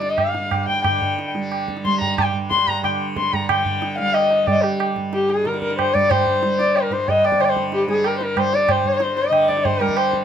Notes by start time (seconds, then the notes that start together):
Already playing: G2 D3 G3 D5
0.02 tabla te
0.09 D#5
0.18 F5, tabla na, tabla ge
0.34 G2, tabla te
0.51 tabla na, tabla ge
0.68 G5, tabla ge
0.84 D3 G5, tabla na, tabla ge
1.02 tabla ge
1.19 tabla te
1.34 G3, tabla te
1.52 tabla na
1.68 tabla ke
1.77 tabla te
1.84 G3 C6, tabla ke
2.01 A#5, tabla tin, tabla ge
2.18 G5, tabla na, tabla ge
2.33 G2
2.50 C6, tabla ke
2.67 A#5, tabla tin, tabla ge
2.83 D3 G5, tabla na, tabla ge
3.17 C6, tabla ke
3.32 G3 A#5, tabla tin, tabla ge
3.49 D3 G5, tabla na, tabla ge
3.65 tabla ge
3.82 tabla te
3.98 G3 F5, tabla te
4.14 D#5, tabla na
4.31 tabla te
4.46 G3 D5, tabla tin, tabla ge
4.51 D5 D#5
4.63 G4, tabla na
4.80 tabla na
4.95 G2, tabla ke
5.13 G4, tabla te
5.29 G#4, tabla te
5.45 D3 A#4, tabla te
5.54 tabla te
5.62 A#4, tabla ke
5.70 tabla te
5.78 C5, tabla na, tabla ge
5.93 G3 D5, tabla ge
6.10 C5, tabla na, tabla ge
6.27 tabla ge
6.42 G3, tabla te
6.59 D5, tabla te
6.76 A#4, tabla na
6.90 G2 C5, tabla te
7.08 D#5, tabla tin, tabla ge
7.25 D5, tabla na
7.32 tabla ke
7.39 D3 C5, tabla na
7.44 D5
7.50 C5
7.57 tabla ke
7.72 G4, tabla te
7.86 G3 G#4, tabla te
8.04 A#4, tabla na
8.17 C5, tabla te
8.23 A#4
8.36 G3 C5, tabla na, tabla ge
8.53 D5, tabla te
8.69 C5, tabla na, tabla ge
8.84 G2, tabla ge
9.00 tabla te
9.17 D#5, tabla te
9.31 D3, tabla na
9.49 D5, tabla ke
9.57 tabla te
9.64 C5, tabla tin, tabla ge
9.80 G3 A#4, tabla na
9.89 tabla ke
9.97 C5, tabla na
10.13 tabla ke